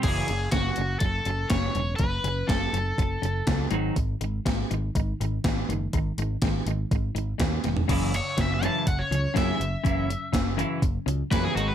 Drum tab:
CC |x---------------|----------------|----------------|----------------|
HH |x-x-x-x-x-x-x-x-|x-x-x-x-x-x-x-x-|x-x-x-x-x-x-x-x-|x-x-x-x-x-x-x-x-|
SD |----o-------o---|----o-------o---|----o-------o---|----o-------o-o-|
FT |----------------|----------------|----------------|---------------o|
BD |o---o---o---o---|o---o---o---o---|o---o---o---o---|o---o---o---o---|

CC |x---------------|----------------|
HH |x-x-x-x-x-x-x-x-|x-x-x-x-x-x-x-x-|
SD |----o-------o---|----o-------o---|
FT |----------------|----------------|
BD |o---o---o---o---|o---o---o---o---|